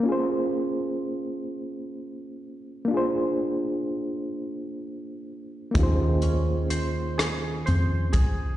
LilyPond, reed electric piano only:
\new Staff \with { instrumentName = "Reed electric piano" } { \time 6/8 \key bes \minor \tempo 4. = 42 <bes des' f' aes' c''>2. | <bes d' f' aes' c''>2. | <bes des' f' g' aes' c''>2. | }